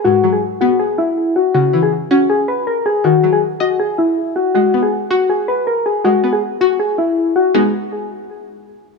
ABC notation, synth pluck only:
X:1
M:4/4
L:1/8
Q:1/4=160
K:G#m
V:1 name="Synth pluck"
G,, F,2 B,4- B, | C, E,2 C4- C | D, F,2 d4- d | G, B,2 F4- F |
G, B,2 F4- F | [G,B,DF] z6 z |]